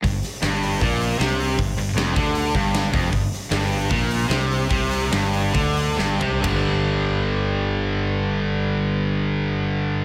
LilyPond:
<<
  \new Staff \with { instrumentName = "Distorted electric guitar" } { \clef bass \time 4/4 \key g \minor \tempo 4 = 147 g,8 r8 g,4 bes,4 c4 | g,8 g,8 f,8 d4 g,4 f,8 | g,8 r8 g,4 bes,4 c4 | c4 g,4 d4 g,8 c8 |
<g, d g>1~ | <g, d g>1 | }
  \new Staff \with { instrumentName = "Overdriven electric guitar" } { \clef bass \time 4/4 \key g \minor g,8 r8 g,4 bes,4 c4 | g,8 g,8 f,8 d4 g,4 f,8 | g,8 r8 g,4 bes,4 c4 | c4 g,4 d4 g,8 c8 |
<g, d g>1~ | <g, d g>1 | }
  \new Staff \with { instrumentName = "Fingered electric bass" } { \clef bass \time 4/4 \key g \minor g,,8 r8 g,,4 bes,,4 c,4 | g,,8 g,,8 f,,8 d,4 g,,4 f,,8 | g,,8 r8 g,,4 bes,,4 c,4 | c,4 g,,4 d,4 g,,8 c,8 |
g,,1~ | g,,1 | }
  \new DrumStaff \with { instrumentName = "Drums" } \drummode { \time 4/4 <hho bd>8 <hho sn>8 <hho sn>8 hho8 <hho bd>8 hho8 <hho sn>8 hho8 | <hho bd>8 hho8 <hho sn>8 <hho bd>8 hho8 <hho bd>8 <hho sn>8 <hho bd>8 | <hho bd>8 <hho sn>8 <hho sn>8 hho8 <hho bd>8 hho8 <hho sn>8 hho8 | <hho bd>8 <hho sn>8 <hho sn>8 hho8 <hho bd>8 hho8 sn8 tomfh8 |
<bd rb tomfh>4 r4 r4 r4 | r4 r4 r4 r4 | }
>>